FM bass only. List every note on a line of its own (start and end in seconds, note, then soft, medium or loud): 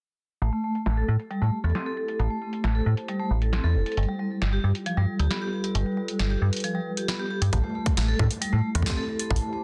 0.42 0.50 A1 medium
0.86 1.03 A1 medium
1.08 1.17 A2 loud
1.42 1.50 A2 medium
1.64 1.72 E2 loud
2.20 2.28 A1 loud
2.64 2.81 A1 medium
2.86 2.95 A2 medium
3.31 3.60 A1 medium
3.64 3.77 E2 medium
3.75 3.84 E1 medium
3.97 4.06 G1 medium
4.42 4.59 G1 medium
4.64 4.72 G2 loud
4.97 5.06 G2 medium
5.19 5.28 D2 loud
5.75 5.83 G1 loud
6.20 6.36 G1 medium
6.42 6.50 G2 loud
7.42 7.50 G2 medium
7.53 7.61 A1 loud
7.97 8.14 A1 medium
8.19 8.28 A2 loud
8.53 8.61 A2 medium
8.75 8.83 E2 loud
9.31 9.39 A1 loud